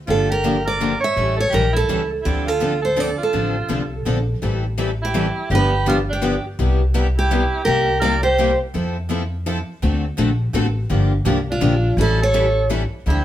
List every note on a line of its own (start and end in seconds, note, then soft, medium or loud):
0.07 0.95 G1 medium
0.07 0.29 D3 medium
0.07 0.29 F3 medium
0.07 0.29 A#3 medium
0.07 0.29 D4 medium
0.07 0.29 F4 medium
0.07 0.30 G4 medium
0.07 0.31 A4 medium
0.29 0.64 G4 medium
0.29 0.65 A#4 medium
0.44 0.55 D3 medium
0.44 0.55 F3 medium
0.44 0.55 A#3 medium
0.44 0.56 D4 medium
0.44 0.56 G4 medium
0.65 1.00 A#4 medium
0.65 1.01 D5 medium
0.80 0.92 D3 medium
0.80 0.92 F3 medium
0.80 0.92 A#3 medium
0.80 0.92 D4 medium
0.80 0.92 G4 medium
1.00 1.35 C#5 medium
1.00 1.37 E5 loud
1.16 1.45 A1 medium
1.16 1.38 E3 medium
1.16 1.38 G3 soft
1.16 1.39 C#4 medium
1.16 1.38 E4 medium
1.16 1.39 A4 medium
1.36 1.49 A4 medium
1.40 1.52 C#5 medium
1.50 1.84 A#1 medium
1.50 1.64 E3 medium
1.50 1.64 G3 medium
1.50 1.64 C#4 medium
1.50 1.64 E4 medium
1.50 1.72 G4 medium
1.50 1.64 A4 medium
1.54 1.74 A#4 medium
1.73 2.08 E4 medium
1.73 2.10 A4 medium
1.89 2.20 C#2 medium
1.89 2.00 E3 medium
1.89 2.00 G3 medium
1.89 2.00 C#4 medium
1.89 2.00 E4 medium
1.89 2.01 A4 medium
2.22 3.12 D2 medium
2.22 2.47 D3 medium
2.22 2.47 F3 medium
2.22 2.47 C4 medium
2.22 2.47 D4 medium
2.22 2.48 E4 medium
2.22 2.48 G4 medium
2.26 2.47 A4 medium
2.46 2.81 F4 medium
2.46 2.84 A4 medium
2.61 2.73 D3 medium
2.61 2.73 F3 medium
2.61 2.73 C4 medium
2.61 2.73 D4 medium
2.61 2.73 A4 medium
2.82 2.97 A4 medium
2.82 3.00 C5 medium
2.96 3.08 D3 medium
2.96 3.08 F3 medium
2.96 3.09 C4 medium
2.96 3.09 D4 medium
2.96 3.17 A4 medium
2.96 3.09 A4 medium
2.96 3.22 D5 medium
3.18 4.01 F4 medium
3.23 4.04 A4 medium
3.33 3.63 A1 medium
3.33 3.55 D3 medium
3.33 3.55 F3 medium
3.33 3.55 C4 medium
3.33 3.55 D4 medium
3.33 3.56 A4 medium
3.69 4.00 C2 medium
3.69 3.81 D3 medium
3.69 3.81 F3 medium
3.69 3.81 C4 medium
3.69 3.81 D4 medium
3.69 3.81 A4 medium
4.05 4.36 A#1 medium
4.05 4.17 D3 medium
4.05 4.18 F3 medium
4.05 4.18 C4 medium
4.05 4.18 D4 medium
4.05 4.18 A4 medium
4.42 5.29 A1 medium
4.42 4.63 E3 medium
4.42 4.64 G3 medium
4.42 4.64 C4 medium
4.42 4.64 E4 medium
4.42 4.64 A4 medium
4.78 4.89 E3 medium
4.78 4.89 G3 medium
4.78 4.89 C4 medium
4.78 4.90 E4 medium
4.78 4.90 A4 medium
5.02 5.48 E4 medium
5.02 5.54 G4 medium
5.14 5.26 E3 medium
5.14 5.26 G3 medium
5.14 5.26 C4 medium
5.14 5.26 E4 medium
5.14 5.26 A4 medium
5.50 6.37 G1 medium
5.50 5.72 D3 medium
5.50 5.72 F3 medium
5.50 5.72 B3 medium
5.50 5.72 D4 medium
5.50 5.72 G4 medium
5.50 5.84 G4 medium
5.55 5.86 B4 loud
5.86 5.98 D3 medium
5.86 5.98 F3 medium
5.86 5.98 B3 medium
5.86 5.98 D4 medium
5.86 5.98 F4 medium
5.86 5.98 G4 medium
5.86 5.95 A4 medium
6.10 6.43 D4 medium
6.10 6.45 G4 medium
6.22 6.33 D3 medium
6.22 6.33 F3 medium
6.22 6.34 B3 medium
6.22 6.34 D4 medium
6.22 6.34 G4 loud
6.59 7.45 C2 medium
6.59 6.80 C3 medium
6.59 6.80 G3 medium
6.59 6.80 B3 medium
6.59 6.80 E4 medium
6.59 6.81 G4 medium
6.94 7.06 C3 medium
6.94 7.06 G3 medium
6.94 7.06 B3 medium
6.94 7.06 E4 medium
6.94 7.06 G4 medium
7.18 7.64 E4 medium
7.18 7.64 G4 medium
7.31 7.42 C3 medium
7.31 7.42 G3 medium
7.31 7.42 B3 medium
7.31 7.43 E4 medium
7.31 7.43 G4 loud
7.64 8.53 C2 medium
7.64 7.88 C3 medium
7.64 7.88 G3 medium
7.64 7.88 A#3 medium
7.64 7.88 E4 medium
7.64 7.99 G4 medium
7.64 7.88 G4 medium
7.64 8.01 A#4 medium
8.00 8.14 C3 medium
8.00 8.14 G3 medium
8.00 8.14 A#3 medium
8.00 8.14 E4 medium
8.00 8.14 G4 medium
8.00 8.22 A#4 medium
8.00 8.23 D5 loud
8.23 8.58 G4 medium
8.23 8.58 C5 medium
8.39 8.50 C3 medium
8.39 8.50 G3 medium
8.39 8.50 A#3 medium
8.39 8.51 E4 medium
8.39 8.51 G4 medium
8.74 9.61 F2 medium
8.74 8.96 F3 medium
8.74 8.96 C4 medium
8.74 8.96 E4 medium
8.74 8.96 A4 medium
9.09 9.21 F3 medium
9.09 9.22 C4 medium
9.09 9.22 E4 medium
9.09 9.22 A4 medium
9.46 9.58 F3 medium
9.46 9.58 C4 medium
9.46 9.58 E4 loud
9.46 9.58 A4 medium
9.82 10.11 D2 medium
9.82 10.04 D3 medium
9.82 10.04 A3 medium
9.82 10.04 C4 medium
9.82 10.04 F#4 medium
9.82 10.04 A4 medium
10.18 10.49 A#1 medium
10.18 10.29 D3 medium
10.18 10.30 A3 medium
10.18 10.30 C4 medium
10.18 10.30 F#4 medium
10.18 10.30 A4 loud
10.53 10.84 A1 medium
10.53 10.66 D3 medium
10.53 10.66 A3 medium
10.53 10.66 C4 medium
10.53 10.66 F#4 medium
10.53 10.66 A4 loud
10.90 11.19 G1 medium
10.90 11.11 D3 medium
10.90 11.12 F3 medium
10.90 11.12 A#3 medium
10.90 11.12 D4 medium
10.90 11.12 G4 medium
11.25 11.56 C2 medium
11.25 11.37 D3 medium
11.25 11.37 F3 medium
11.25 11.38 A#3 medium
11.25 11.38 D4 loud
11.25 11.38 G4 medium
11.50 11.96 D4 medium
11.50 11.96 F4 medium
11.61 11.92 A#1 medium
11.61 11.73 D3 medium
11.61 11.73 F3 medium
11.61 11.73 A#3 medium
11.61 11.74 D4 medium
11.61 11.74 G4 medium
11.97 12.84 A1 medium
11.97 12.20 E3 medium
11.97 12.20 G3 medium
11.97 12.20 C#4 medium
11.97 12.20 E4 medium
11.97 12.21 E4 medium
11.97 12.20 A4 medium
11.97 12.21 A4 medium
12.21 12.67 A4 medium
12.21 12.68 C#5 medium
12.34 12.45 E3 medium
12.34 12.46 G3 medium
12.34 12.46 C#4 medium
12.34 12.46 E4 medium
12.34 12.46 A4 medium
12.70 12.82 E3 medium
12.70 12.82 G3 medium
12.70 12.82 C#4 medium
12.70 12.82 E4 medium
12.70 12.82 A4 medium
13.06 13.25 D2 medium
13.06 13.25 D3 medium
13.06 13.25 F3 medium
13.06 13.25 C4 medium
13.06 13.25 D4 medium
13.06 13.25 E4 medium
13.06 13.25 A4 medium
13.10 13.25 G4 medium